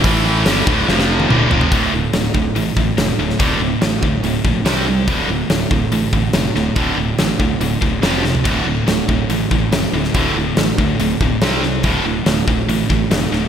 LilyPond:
<<
  \new Staff \with { instrumentName = "Distorted electric guitar" } { \clef bass \time 4/4 \key d \minor \tempo 4 = 142 <a, e a>4 <g, d g>8 <d, a, d>8 <f, c f>4 <d, a, d>8 <f, c f>8 | <d, a, d>8 <d, a,>8 <d, a,>8 <d, a,>8 <d, a,>8 <d, a,>8 <d, a,>8 <d, a,>8 | <d, a, d>8 <d, a,>8 <d, a,>8 <d, a,>8 <d, a,>8 <d, a,>8 <c g c'>8 <c g>8 | <d, a, d>8 <d, a,>8 <d, a,>8 <d, a,>8 <d, a,>8 <d, a,>8 <d, a,>8 <d, a,>8 |
<d, a, d>8 <d, a,>8 <d, a,>8 <d, a,>8 <d, a,>8 <d, a,>8 <f, c f>8 <f, c>8 | <d, a, d>8 <d, a,>8 <d, a,>8 <d, a,>8 <d, a,>8 <d, a,>8 <d, a,>8 <d, a,>8 | <d, a, d>8 <d, a,>8 <d, a,>8 <d, a,>8 <d, a,>8 <d, a,>8 <c g c'>8 <c g>8 | <d, a, d>8 <d, a,>8 <d, a,>8 <d, a,>8 <d, a,>8 <d, a,>8 <d, a,>8 <d, a,>8 | }
  \new Staff \with { instrumentName = "Distorted electric guitar" } { \clef bass \time 4/4 \key d \minor <a, e a>4 <g, d g>8 <d, a, d>8 <f, c f>4 <d, a, d>8 <f, c f>8 | <d, a, d>8 <d, a,>8 <d, a,>8 <d, a,>8 <d, a,>8 <d, a,>8 <d, a,>8 <d, a,>8 | <d, a, d>8 <d, a,>8 <d, a,>8 <d, a,>8 <d, a,>8 <d, a,>8 <c g c'>8 <c g>8 | <d, a, d>8 <d, a,>8 <d, a,>8 <d, a,>8 <d, a,>8 <d, a,>8 <d, a,>8 <d, a,>8 |
<d, a, d>8 <d, a,>8 <d, a,>8 <d, a,>8 <d, a,>8 <d, a,>8 <f, c f>8 <f, c>8 | <d, a, d>8 <d, a,>8 <d, a,>8 <d, a,>8 <d, a,>8 <d, a,>8 <d, a,>8 <d, a,>8 | <d, a, d>8 <d, a,>8 <d, a,>8 <d, a,>8 <d, a,>8 <d, a,>8 <c g c'>8 <c g>8 | <d, a, d>8 <d, a,>8 <d, a,>8 <d, a,>8 <d, a,>8 <d, a,>8 <d, a,>8 <d, a,>8 | }
  \new Staff \with { instrumentName = "Fingered electric bass" } { \clef bass \time 4/4 \key d \minor a,,4 g,,8 d,,8 f,,4 d,,8 f,,8 | d,,8 d,,8 d,,8 d,,8 a,,8 a,,8 f,,8 d,,8 | d,,8 d,,8 a,,8 d,8 d,,8 bes,,8 c,4 | d,,8 d,,8 d,,8 d,,8 a,,8 a,,8 f,,8 d,,8 |
d,,8 d,,8 a,,8 d,8 d,,8 d,,8 f,,4 | d,,8 d,,8 d,,8 d,,8 a,,8 a,,8 f,,8 d,,8 | d,,8 d,,8 a,,8 d,8 d,,8 d,,8 c,4 | d,,8 d,,8 d,,8 d,,8 a,,8 a,,8 f,,8 d,,8 | }
  \new DrumStaff \with { instrumentName = "Drums" } \drummode { \time 4/4 <hho bd>4 <hho sn>8 bd8 sn16 sn8 tommh16 toml8 tomfh16 tomfh16 | <hho bd>4 <hho sn>8 bd8 hho8 bd8 <hho sn>8. sn16 | <hho bd>4 <hho sn>8 bd8 hho8 bd8 <hho sn>4 | <hho bd>4 <hho sn>8 bd8 hho8 bd8 <hho sn>8 sn8 |
<hho bd>4 <hho sn>8 bd8 hho8 bd8 <hho sn>8 sn16 tomfh16 | <cymc hho bd>4 <hho sn>8 bd8 hho8 bd8 <hho sn>8. sn16 | <hho bd>4 <hho sn>8 bd8 hho8 bd8 <hho sn>8 sn8 | <hho bd>4 <hho sn>8 bd8 hho8 bd8 <hho sn>8 sn8 | }
>>